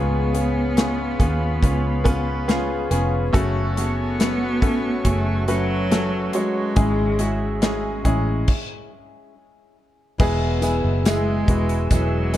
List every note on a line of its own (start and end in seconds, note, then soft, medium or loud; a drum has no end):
0.00 1.16 C#2 medium
0.00 1.16 G#2 medium
0.00 0.34 C#3 medium
0.00 0.34 G#3 medium
0.00 0.32 B3 medium
0.00 0.34 B3 medium
0.00 2.87 B3 medium
0.00 0.32 C#4 medium
0.00 0.32 F4 medium
0.00 0.33 F4 medium
0.00 0.32 G#4 medium
0.00 3.30 G#4 medium
0.00 3.30 C#5 medium
0.00 3.30 F5 medium
0.00 3.30 B5 medium
0.33 0.75 B3 medium
0.33 0.76 B3 soft
0.33 0.75 C#4 soft
0.33 0.75 F4 medium
0.33 0.77 F4 soft
0.33 0.76 G#4 soft
0.33 0.75 G#4 medium
0.33 closed hi-hat medium
0.76 1.20 G#3 medium
0.76 1.18 B3 medium
0.76 1.20 B3 medium
0.76 1.18 C#4 medium
0.76 1.18 F4 medium
0.76 1.20 F4 medium
0.76 1.18 G#4 medium
0.76 snare loud
0.76 closed hi-hat medium
1.19 1.60 D#2 medium
1.19 1.61 B3 medium
1.19 2.07 B3 soft
1.19 1.61 C#4 medium
1.19 1.61 F4 medium
1.19 2.05 F4 soft
1.19 2.03 G#4 medium
1.19 1.61 B4 medium
1.19 kick medium
1.19 closed hi-hat medium
1.63 2.87 C#2 medium
1.63 2.03 B3 medium
1.63 2.03 C#4 medium
1.63 2.04 F4 medium
1.63 2.03 B4 medium
1.63 kick medium
1.63 closed hi-hat medium
2.04 2.45 B3 loud
2.04 2.47 B3 soft
2.04 2.46 C#4 medium
2.04 2.46 F4 medium
2.04 2.48 F4 soft
2.04 2.48 G#4 soft
2.04 2.46 B4 loud
2.04 kick medium
2.04 closed hi-hat medium
2.47 3.33 G#3 medium
2.47 2.89 B3 medium
2.47 3.34 B3 medium
2.47 2.89 C#4 medium
2.47 2.89 F4 medium
2.47 3.35 F4 medium
2.47 2.89 G#4 medium
2.47 3.35 G#4 medium
2.47 snare medium
2.47 closed hi-hat medium
2.91 3.31 F1 medium
2.91 3.32 B3 medium
2.91 3.32 C#4 medium
2.91 3.32 F4 medium
2.91 3.32 G#4 medium
2.91 closed hi-hat medium
3.33 4.63 F#1 medium
3.33 4.58 C#3 medium
3.33 3.77 F#3 medium
3.33 3.74 A3 loud
3.33 3.74 C#4 medium
3.33 3.77 C#4 medium
3.33 3.74 F#4 medium
3.33 6.73 F#4 medium
3.33 3.76 F#4 medium
3.33 3.74 A4 loud
3.33 3.74 A4 medium
3.33 8.44 C#5 medium
3.33 6.73 F#5 medium
3.33 8.44 C#6 medium
3.33 kick loud
3.33 closed hi-hat medium
3.75 4.18 A3 medium
3.75 5.07 B3 loud
3.75 4.18 C#4 medium
3.75 4.18 C#4 soft
3.75 4.20 F#4 soft
3.75 4.18 F#4 medium
3.75 4.18 G#4 medium
3.75 4.19 A4 medium
3.75 closed hi-hat medium
4.18 4.62 F#3 medium
4.18 4.60 A3 medium
4.18 4.60 C#4 medium
4.18 4.63 C#4 medium
4.18 4.60 F#4 medium
4.18 4.62 F#4 medium
4.18 4.60 A4 medium
4.18 4.60 B4 medium
4.18 snare medium
4.18 closed hi-hat medium
4.61 5.02 A1 medium
4.61 5.03 A3 medium
4.61 5.03 C#4 medium
4.61 5.50 C#4 soft
4.61 5.03 F#4 medium
4.61 5.47 F#4 soft
4.61 5.46 A4 soft
4.61 5.03 A4 medium
4.61 kick medium
4.61 closed hi-hat medium
5.04 6.30 F#1 medium
5.04 5.46 A3 medium
5.04 5.47 A3 medium
5.04 5.46 C#4 medium
5.04 5.46 F#4 medium
5.04 5.46 G#4 medium
5.04 kick medium
5.04 closed hi-hat medium
5.47 6.35 F#3 loud
5.47 5.89 A3 medium
5.47 5.89 C#4 medium
5.47 5.90 C#4 soft
5.47 5.89 F#4 medium
5.47 5.91 F#4 soft
5.47 5.91 A4 soft
5.47 5.89 B4 loud
5.47 closed hi-hat medium
5.90 6.76 F#3 soft
5.90 6.32 A3 medium
5.90 6.76 C#4 medium
5.90 6.32 C#4 medium
5.90 6.32 F#4 medium
5.90 6.77 F#4 medium
5.90 6.32 A4 medium
5.90 snare medium
5.90 closed hi-hat medium
6.33 6.75 F#3 medium
6.33 7.62 G#3 medium
6.33 6.75 C#4 medium
6.33 6.75 F#4 medium
6.33 6.75 C#5 medium
6.33 closed hi-hat medium
6.76 8.01 G#1 medium
6.76 7.19 G#2 medium
6.76 8.01 G#2 medium
6.76 7.19 C#3 medium
6.76 7.17 G#3 medium
6.76 7.20 G#3 medium
6.76 7.17 C#4 medium
6.76 7.20 C#4 medium
6.76 7.18 E4 medium
6.76 7.19 E4 medium
6.76 7.18 G#4 medium
6.76 8.47 G#4 medium
6.76 7.17 G#4 medium
6.76 8.47 E5 medium
6.76 kick medium
6.76 closed hi-hat medium
7.19 7.60 G#3 medium
7.19 7.60 G#3 soft
7.19 7.60 C#4 medium
7.19 7.61 C#4 soft
7.19 7.60 E4 medium
7.19 7.62 E4 soft
7.19 7.61 F#4 medium
7.19 7.62 G#4 soft
7.19 closed hi-hat medium
7.61 8.05 G#3 medium
7.61 8.03 G#3 medium
7.61 8.03 C#4 medium
7.61 8.05 C#4 medium
7.61 8.03 E4 medium
7.61 8.04 E4 medium
7.61 8.03 G#4 medium
7.61 snare loud
7.61 closed hi-hat medium
8.04 8.45 A1 medium
8.04 8.46 G#3 medium
8.04 8.49 G#3 soft
8.04 8.46 C#4 medium
8.04 8.49 C#4 medium
8.04 8.48 E4 medium
8.04 8.46 E4 medium
8.04 8.48 G#4 medium
8.04 8.46 G#4 medium
8.04 kick medium
8.04 closed hi-hat medium
8.48 kick medium
8.48 crash medium
10.18 10.80 E1 loud
10.18 11.45 B2 medium
10.18 10.62 E3 medium
10.18 10.61 G#3 medium
10.18 10.61 G#3 loud
10.18 10.61 B3 medium
10.18 10.60 E4 medium
10.18 10.61 E4 loud
10.18 10.60 G#4 medium
10.18 10.61 G#4 loud
10.18 12.37 B4 medium
10.18 12.37 E5 medium
10.18 12.37 G#5 medium
10.18 12.37 E6 medium
10.18 kick loud
10.18 crash medium
10.18 tambourine soft
10.61 11.03 E3 medium
10.61 11.04 G#3 medium
10.61 11.03 G#3 medium
10.61 11.04 B3 medium
10.61 11.03 B3 medium
10.61 11.05 E4 medium
10.61 11.04 E4 medium
10.61 11.05 G#4 medium
10.61 11.04 G#4 medium
10.61 closed hi-hat medium
10.61 tambourine soft
10.84 11.45 F#1 medium
11.04 11.48 E3 medium
11.04 11.48 G#3 medium
11.04 11.46 G#3 medium
11.04 11.88 G#3 medium
11.04 11.48 B3 medium
11.04 11.46 B3 medium
11.04 11.47 E4 medium
11.04 11.46 G#4 medium
11.04 11.45 G#4 medium
11.04 snare loud
11.04 closed hi-hat medium
11.04 tambourine medium
11.47 11.88 E1 medium
11.47 11.89 G#3 medium
11.47 11.89 B3 medium
11.47 11.90 B3 soft
11.47 11.91 E4 medium
11.47 11.90 E4 medium
11.47 11.90 F#4 medium
11.47 11.90 G#4 medium
11.47 kick medium
11.47 closed hi-hat medium
11.69 closed hi-hat soft
11.90 12.37 E1 medium
11.90 12.37 F#3 medium
11.90 12.33 G#3 medium
11.90 12.32 G#3 medium
11.90 12.34 B3 medium
11.90 12.32 B3 medium
11.90 12.32 E4 medium
11.90 12.33 E4 medium
11.90 12.32 G#4 medium
11.90 12.31 G#4 medium
11.90 kick medium
11.90 closed hi-hat medium
11.90 tambourine medium
12.33 12.37 G#3 medium
12.33 12.37 B3 medium
12.33 12.37 E4 medium
12.33 12.37 G#4 soft
12.33 closed hi-hat medium
12.33 tambourine soft